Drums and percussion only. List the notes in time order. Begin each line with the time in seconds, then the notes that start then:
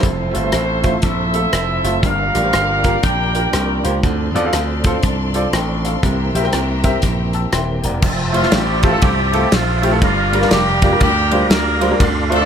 0.03 kick, closed hi-hat
0.35 closed hi-hat
0.52 cross-stick, closed hi-hat
0.84 kick, closed hi-hat
1.02 kick, closed hi-hat
1.34 closed hi-hat
1.53 cross-stick, closed hi-hat
1.85 cross-stick, closed hi-hat
2.03 kick, closed hi-hat
2.35 closed hi-hat
2.53 cross-stick, closed hi-hat
2.84 kick, closed hi-hat
3.03 kick, closed hi-hat
3.35 closed hi-hat
3.53 cross-stick, closed hi-hat
3.85 closed hi-hat
4.03 kick, closed hi-hat
4.36 closed hi-hat
4.53 cross-stick, closed hi-hat
4.84 kick, closed hi-hat
5.03 kick, closed hi-hat
5.34 closed hi-hat
5.53 cross-stick, closed hi-hat
5.85 cross-stick, closed hi-hat
6.03 kick, closed hi-hat
6.35 closed hi-hat
6.44 cross-stick
6.53 cross-stick, closed hi-hat
6.84 kick, closed hi-hat
7.02 kick, closed hi-hat
7.33 closed hi-hat
7.53 cross-stick, closed hi-hat
7.84 closed hi-hat
8.02 kick, crash
8.34 ride
8.43 snare
8.52 snare, ride
8.83 kick, ride
9.02 kick, ride
9.33 ride
9.52 snare, ride
9.83 ride
10.02 kick, ride
10.33 ride
10.42 snare
10.51 snare, ride
10.82 kick, ride
11.00 kick, ride
11.31 ride
11.51 snare, ride
11.81 ride
12.00 kick, ride
12.32 ride